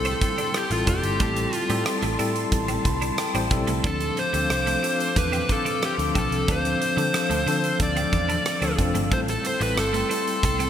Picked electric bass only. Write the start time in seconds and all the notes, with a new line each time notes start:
Already playing: C2
0.71 A1
0.87 F1
1.03 G1
1.20 A1
1.70 A2
2.03 A1
2.19 A2
2.52 A1
2.85 C2
3.35 A1
3.51 B1
3.68 C2
3.84 D2
4.33 D2
4.50 C2
5.16 E2
5.98 D2
6.15 B1
6.31 C2
6.48 D2
6.97 D3
7.30 D2
7.46 D3
7.80 D2
8.13 E2
8.62 D2
8.79 F1
8.95 G1
9.11 A1
9.61 A1
9.77 G1
10.43 C2